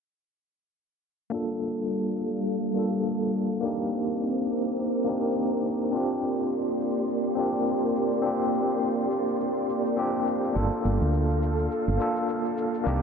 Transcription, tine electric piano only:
0, 0, Header, 1, 2, 480
1, 0, Start_track
1, 0, Tempo, 576923
1, 1102, Time_signature, 4, 2, 24, 8
1, 10834, End_track
2, 0, Start_track
2, 0, Title_t, "Tine electric piano"
2, 0, Program_c, 0, 4
2, 1082, Note_on_c, 0, 58, 77
2, 1094, Note_on_c, 0, 62, 73
2, 1108, Note_on_c, 0, 65, 66
2, 1119, Note_on_c, 0, 69, 91
2, 1248, Control_c, 0, 64, 127
2, 2267, Note_off_c, 0, 58, 0
2, 2273, Note_off_c, 0, 62, 0
2, 2280, Note_off_c, 0, 65, 0
2, 2282, Note_on_c, 0, 58, 73
2, 2285, Note_off_c, 0, 69, 0
2, 2292, Note_on_c, 0, 62, 66
2, 2307, Note_on_c, 0, 65, 64
2, 2319, Note_on_c, 0, 69, 79
2, 2987, Note_off_c, 0, 58, 0
2, 2992, Note_off_c, 0, 62, 0
2, 2999, Note_off_c, 0, 65, 0
2, 3000, Note_on_c, 0, 58, 80
2, 3006, Note_off_c, 0, 69, 0
2, 3015, Note_on_c, 0, 62, 71
2, 3027, Note_on_c, 0, 63, 74
2, 3033, Control_c, 0, 64, 0
2, 3038, Note_on_c, 0, 67, 86
2, 3176, Control_c, 0, 64, 127
2, 4186, Note_off_c, 0, 58, 0
2, 4193, Note_off_c, 0, 62, 0
2, 4197, Note_on_c, 0, 58, 70
2, 4199, Note_off_c, 0, 63, 0
2, 4205, Note_off_c, 0, 67, 0
2, 4210, Note_on_c, 0, 62, 66
2, 4223, Note_on_c, 0, 63, 64
2, 4235, Note_on_c, 0, 67, 83
2, 4905, Note_off_c, 0, 58, 0
2, 4911, Note_off_c, 0, 62, 0
2, 4918, Note_off_c, 0, 63, 0
2, 4919, Note_on_c, 0, 60, 76
2, 4924, Note_off_c, 0, 67, 0
2, 4931, Note_on_c, 0, 62, 73
2, 4945, Note_on_c, 0, 65, 76
2, 4953, Control_c, 0, 64, 0
2, 4957, Note_on_c, 0, 67, 90
2, 5104, Control_c, 0, 64, 127
2, 6105, Note_off_c, 0, 60, 0
2, 6111, Note_off_c, 0, 62, 0
2, 6118, Note_off_c, 0, 65, 0
2, 6118, Note_on_c, 0, 60, 76
2, 6124, Note_off_c, 0, 67, 0
2, 6130, Note_on_c, 0, 62, 67
2, 6144, Note_on_c, 0, 65, 64
2, 6156, Note_on_c, 0, 67, 81
2, 6825, Note_off_c, 0, 60, 0
2, 6831, Note_off_c, 0, 62, 0
2, 6838, Note_off_c, 0, 65, 0
2, 6839, Note_on_c, 0, 60, 80
2, 6844, Note_off_c, 0, 67, 0
2, 6851, Note_on_c, 0, 62, 76
2, 6864, Note_on_c, 0, 65, 74
2, 6876, Note_on_c, 0, 67, 86
2, 8025, Note_off_c, 0, 60, 0
2, 8031, Note_off_c, 0, 62, 0
2, 8038, Note_off_c, 0, 65, 0
2, 8044, Note_off_c, 0, 67, 0
2, 8290, Note_on_c, 0, 60, 76
2, 8297, Note_on_c, 0, 62, 68
2, 8302, Note_on_c, 0, 65, 74
2, 8308, Note_on_c, 0, 67, 89
2, 8751, Note_off_c, 0, 60, 0
2, 8754, Note_off_c, 0, 62, 0
2, 8757, Note_off_c, 0, 65, 0
2, 8759, Note_on_c, 0, 58, 82
2, 8760, Note_off_c, 0, 67, 0
2, 8772, Note_on_c, 0, 62, 76
2, 8783, Note_on_c, 0, 65, 73
2, 8794, Control_c, 0, 64, 0
2, 8795, Note_on_c, 0, 69, 85
2, 8936, Control_c, 0, 64, 127
2, 9945, Note_off_c, 0, 58, 0
2, 9952, Note_off_c, 0, 62, 0
2, 9958, Note_off_c, 0, 65, 0
2, 9962, Note_on_c, 0, 58, 72
2, 9964, Note_off_c, 0, 69, 0
2, 9972, Note_on_c, 0, 62, 66
2, 9986, Note_on_c, 0, 65, 70
2, 9998, Note_on_c, 0, 69, 79
2, 10667, Note_off_c, 0, 58, 0
2, 10672, Note_off_c, 0, 62, 0
2, 10679, Note_off_c, 0, 65, 0
2, 10680, Note_on_c, 0, 58, 86
2, 10685, Note_off_c, 0, 69, 0
2, 10691, Note_on_c, 0, 62, 78
2, 10703, Note_on_c, 0, 63, 78
2, 10714, Control_c, 0, 64, 0
2, 10715, Note_on_c, 0, 67, 95
2, 10834, Note_off_c, 0, 58, 0
2, 10834, Note_off_c, 0, 62, 0
2, 10834, Note_off_c, 0, 63, 0
2, 10834, Note_off_c, 0, 67, 0
2, 10834, End_track
0, 0, End_of_file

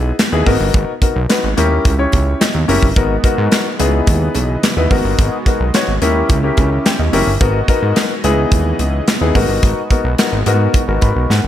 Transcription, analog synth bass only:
0, 0, Header, 1, 2, 480
1, 0, Start_track
1, 0, Key_signature, 5, "minor"
1, 0, Tempo, 555556
1, 641, Time_signature, 4, 2, 24, 8
1, 9914, End_track
2, 0, Start_track
2, 0, Title_t, "Analog synth bass"
2, 0, Program_c, 0, 38
2, 0, Note_on_c, 0, 35, 109
2, 107, Note_off_c, 0, 35, 0
2, 279, Note_on_c, 0, 39, 91
2, 373, Note_off_c, 0, 39, 0
2, 402, Note_on_c, 0, 32, 104
2, 495, Note_off_c, 0, 32, 0
2, 521, Note_on_c, 0, 31, 91
2, 614, Note_off_c, 0, 31, 0
2, 641, Note_on_c, 0, 32, 112
2, 734, Note_off_c, 0, 32, 0
2, 1001, Note_on_c, 0, 35, 104
2, 1094, Note_off_c, 0, 35, 0
2, 1241, Note_on_c, 0, 32, 97
2, 1334, Note_off_c, 0, 32, 0
2, 1361, Note_on_c, 0, 39, 107
2, 1548, Note_off_c, 0, 39, 0
2, 1600, Note_on_c, 0, 37, 94
2, 1787, Note_off_c, 0, 37, 0
2, 1843, Note_on_c, 0, 37, 99
2, 2028, Note_off_c, 0, 37, 0
2, 2199, Note_on_c, 0, 39, 93
2, 2293, Note_off_c, 0, 39, 0
2, 2319, Note_on_c, 0, 30, 95
2, 2413, Note_off_c, 0, 30, 0
2, 2441, Note_on_c, 0, 31, 83
2, 2534, Note_off_c, 0, 31, 0
2, 2561, Note_on_c, 0, 32, 108
2, 2747, Note_off_c, 0, 32, 0
2, 2920, Note_on_c, 0, 44, 120
2, 3014, Note_off_c, 0, 44, 0
2, 3281, Note_on_c, 0, 37, 109
2, 3468, Note_off_c, 0, 37, 0
2, 3520, Note_on_c, 0, 39, 99
2, 3707, Note_off_c, 0, 39, 0
2, 3758, Note_on_c, 0, 35, 98
2, 3946, Note_off_c, 0, 35, 0
2, 4118, Note_on_c, 0, 39, 85
2, 4212, Note_off_c, 0, 39, 0
2, 4240, Note_on_c, 0, 32, 95
2, 4334, Note_off_c, 0, 32, 0
2, 4357, Note_on_c, 0, 31, 98
2, 4452, Note_off_c, 0, 31, 0
2, 4481, Note_on_c, 0, 32, 118
2, 4574, Note_off_c, 0, 32, 0
2, 4839, Note_on_c, 0, 35, 100
2, 4933, Note_off_c, 0, 35, 0
2, 5079, Note_on_c, 0, 32, 102
2, 5173, Note_off_c, 0, 32, 0
2, 5199, Note_on_c, 0, 39, 95
2, 5386, Note_off_c, 0, 39, 0
2, 5441, Note_on_c, 0, 37, 93
2, 5628, Note_off_c, 0, 37, 0
2, 5683, Note_on_c, 0, 37, 104
2, 5869, Note_off_c, 0, 37, 0
2, 6040, Note_on_c, 0, 39, 82
2, 6134, Note_off_c, 0, 39, 0
2, 6158, Note_on_c, 0, 30, 92
2, 6253, Note_off_c, 0, 30, 0
2, 6278, Note_on_c, 0, 31, 87
2, 6373, Note_off_c, 0, 31, 0
2, 6402, Note_on_c, 0, 32, 103
2, 6588, Note_off_c, 0, 32, 0
2, 6760, Note_on_c, 0, 44, 96
2, 6854, Note_off_c, 0, 44, 0
2, 7119, Note_on_c, 0, 37, 100
2, 7306, Note_off_c, 0, 37, 0
2, 7359, Note_on_c, 0, 39, 106
2, 7547, Note_off_c, 0, 39, 0
2, 7597, Note_on_c, 0, 37, 91
2, 7785, Note_off_c, 0, 37, 0
2, 7958, Note_on_c, 0, 39, 81
2, 8053, Note_off_c, 0, 39, 0
2, 8081, Note_on_c, 0, 32, 97
2, 8174, Note_off_c, 0, 32, 0
2, 8196, Note_on_c, 0, 31, 88
2, 8291, Note_off_c, 0, 31, 0
2, 8320, Note_on_c, 0, 32, 123
2, 8414, Note_off_c, 0, 32, 0
2, 8677, Note_on_c, 0, 35, 102
2, 8772, Note_off_c, 0, 35, 0
2, 8919, Note_on_c, 0, 32, 108
2, 9013, Note_off_c, 0, 32, 0
2, 9040, Note_on_c, 0, 44, 103
2, 9227, Note_off_c, 0, 44, 0
2, 9400, Note_on_c, 0, 32, 93
2, 9494, Note_off_c, 0, 32, 0
2, 9522, Note_on_c, 0, 32, 105
2, 9615, Note_off_c, 0, 32, 0
2, 9641, Note_on_c, 0, 35, 91
2, 9734, Note_off_c, 0, 35, 0
2, 9761, Note_on_c, 0, 44, 94
2, 9854, Note_off_c, 0, 44, 0
2, 9882, Note_on_c, 0, 32, 88
2, 9914, Note_off_c, 0, 32, 0
2, 9914, End_track
0, 0, End_of_file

